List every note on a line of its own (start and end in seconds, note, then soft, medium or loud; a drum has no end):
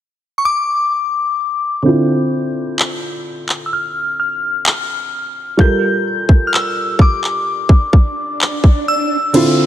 0.38 0.44 C#6 medium
0.45 1.81 D6 medium
1.82 5.54 D3 medium
1.82 5.55 C4 medium
1.82 5.56 E4 medium
1.82 3.21 G6 loud
1.87 5.57 F4 medium
2.79 clap loud
3.49 clap medium
3.66 3.72 E6 medium
3.73 4.18 F6 medium
4.20 5.64 F6 medium
4.66 clap loud
5.57 9.29 G3 medium
5.57 9.30 F4 medium
5.57 9.31 A4 medium
5.57 6.42 G6 loud
5.57 kick loud
5.57 swell medium
5.62 9.32 A#4 medium
6.29 kick medium
6.47 6.53 F6 medium
6.54 7.02 E6 medium
6.54 clap loud
6.99 8.84 D6 medium
6.99 kick medium
7.24 clap medium
7.69 kick medium
7.93 kick medium
8.41 clap loud
8.64 kick medium
8.88 9.66 E6 medium
9.33 9.66 D3 medium
9.33 9.66 C4 medium
9.33 9.66 E4 medium
9.33 9.66 F4 loud
9.33 closed hi-hat medium
9.33 crash medium
9.33 downlifter medium